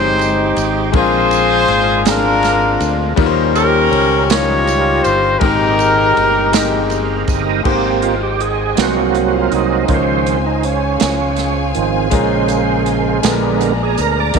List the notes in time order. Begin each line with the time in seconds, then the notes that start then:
Already playing: G1 C3 G#3 C4 D#4 G4 C5 C#5 D#5 G5
0.19 ride, tambourine
0.56 G#1, ride, tambourine
0.92 A#1 A#2 G#3 C4 D4 F4 G#4 A#4 C5, kick, ride
0.96 F4
1.31 ride, tambourine
1.68 G#1, ride
2.04 G#3 C4 D4 F4 G#4 A#4, snare, ride, tambourine
2.09 D4 F4
2.43 snare, ride, tambourine
2.80 D2, ride, tambourine
3.16 D#2 D#3 G3 C#4 D#4 F4 A#4, kick, ride
3.26 C5
3.55 C#4 G4 A#4, ride, tambourine
3.92 C#2, ride
4.29 G3 C#4 D#4 F4 G4 A#4 C#5, snare, ride, tambourine
4.67 ride, tambourine
5.03 G1 C5, ride, tambourine
5.39 G#1 A#2 G#3 C4 D#4 G4 A#4, kick, ride
5.79 ride, tambourine
6.17 G1, ride
6.51 G#3 A#3 D#4 G4 A#4, snare, ride, tambourine
6.59 C4
6.90 F5, ride, tambourine
7.28 G1 D#5, kick, ride, tambourine
7.63 G#1 G#2 G#3 A#3 C4 D#4 G4 C5 D#5 G5, kick, crash
8.02 F4, closed hi-hat
8.23 G4
8.40 G#4, closed hi-hat
8.75 C2 C3 F#3 G#3 D#4 F#4 B4 F#5 G#5, snare, closed hi-hat
8.79 A#3 C4 F#4
8.85 C5
9.15 closed hi-hat
9.34 F4
9.52 C2 D#4, closed hi-hat
9.86 C#2 C#3 D#3 F3 G#3 C#4 F4 G#4 A#4 C5, kick, closed hi-hat
9.90 F5
9.96 C5
10.26 C4, closed hi-hat
10.46 D#4
10.63 C#4, closed hi-hat
10.98 G#3 C#4 F4 G#4, snare, closed hi-hat
11.02 C#2
11.36 snare, closed hi-hat
11.75 G#1 D#3 F3 C4, closed hi-hat
12.10 A#1 A#2 C#3 G#3 C#4 F4 A#4 C5, kick, closed hi-hat
12.48 closed hi-hat, tambourine
12.86 closed hi-hat
13.22 A#1 A#2 D3 G#3 B3 D4 A4 D5 A#5, snare, closed hi-hat, tambourine
13.32 A#4
13.60 A#4, closed hi-hat, tambourine
13.83 G#4
13.98 D2 A#4, closed hi-hat, tambourine
14.20 D5
14.34 D#2 D#3 G3 A#3 A#4 D#5 G5, kick, closed hi-hat